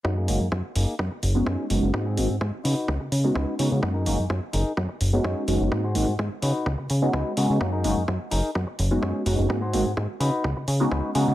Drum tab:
HH |-o-o-o-o|-o-o-o-o|-o-o-o-o|-o-o-o-o|
BD |o-o-o-o-|o-o-o-o-|o-o-o-o-|o-o-o-o-|

HH |-o-o-o-o|-o-o-o-o|
BD |o-o-o-o-|o-o-o-o-|